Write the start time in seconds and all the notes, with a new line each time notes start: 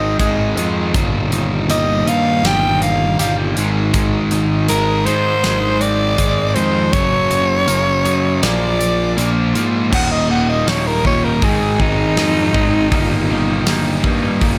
Already playing: G#1 G#2 D#3 G#3 C4 D#4 D#5
0.19 G#1 G#2 D#3 G#3 D#5, kick, closed hi-hat
0.56 F2 G#2 D#3 G#3, closed hi-hat
0.93 G1 D#2 A#2 D#3, kick, closed hi-hat
1.31 G1 D#3, closed hi-hat
1.69 G1 D#2 A#2 D#3 G3 D#5, closed hi-hat
2.06 D#2 G2 A#2 D#3 D#4 F5, closed hi-hat
2.44 G1 D#2 A#2 D#3 G3 G5, snare, closed hi-hat
2.82 A#3 F5, closed hi-hat
3.19 G1 D#2 A#2 D#3 G3 F5, closed hi-hat
3.57 G#1 G#2 D#3 G#3, closed hi-hat
3.94 G#1 G#2 D#3 G#3, kick, closed hi-hat
4.31 G#1 D#3, closed hi-hat
4.68 G#1 G#2 D#3 G#3 A#4, closed hi-hat
5.06 G#2 D#3 G#3 D#4 C5, closed hi-hat
5.43 G#1 G#2 D#3 G#3, snare, closed hi-hat
5.81 C4 D5, closed hi-hat
6.18 G#1 G#2 D#3 G#3, kick, closed hi-hat
6.55 F2 G#2 D#3 G#3 C5, closed hi-hat
6.92 F#1 F#2 C#3 F#3 C#5, kick, closed hi-hat
7.30 F#1 F#3, closed hi-hat
7.67 F#1 F#2 C#3 F#3 A#3, closed hi-hat
8.05 F#2 C#3 F#3 D#4, closed hi-hat
8.42 A#1 A#2 F3 A#3 D5, snare, closed hi-hat
8.79 D4, closed hi-hat
9.17 A#1 A#2 F3 A#3, closed hi-hat
9.54 G#2 A#2 F3 A#3, closed hi-hat
9.90 D#1 D#2 A#2 D#3 G3 A#3 D#4, kick, crash
9.94 F#5
10.10 D#3 G3 A#3 D#4 D#5
10.28 D#2 A#2 D#3 G3 A#3 D#4 F#5
10.48 D#3 G3 A#3 D#4 D#5
10.66 D#1 D#2 A#2 D#3 G3 A#3 D#4 C#5, snare, open hi-hat
10.87 A#4
11.04 D#2 A#2 D#3 G3 A#3 D#4 C#5, kick
11.23 D#3 G3 A#3 D#4 A#4
11.41 G#1 G#2 D#3 G#3 C4 D#4 G#4, kick, open hi-hat
11.60 G#3 C4 D#4
11.78 G#1 G#2 D#3 G#3 C4 D#4, kick
11.97 G#3 C4 D#4
12.16 F2 G#2 D#3 G#3 C4 D#4, snare, open hi-hat
12.53 G#1 G#2 D#3 G#3 C4 D#4, kick
12.91 G1 D#2 A#2 D#3 G3 A#3 D#4, kick, open hi-hat
13.09 D#3 G3 A#3 D#4
13.29 G1 D#2 A#2 D#3 G3 A#3 D#4
13.48 D#3 G3 A#3 D#4
13.66 G1 D#2 A#2 D#3 G3 A#3 D#4, snare, open hi-hat
14.03 D#2 G2 A#2 D#3 G3 A#3 D#4, kick
14.22 D#3 G3 A#3 D#4
14.41 G1 D#2 A#2 D#3, kick, open hi-hat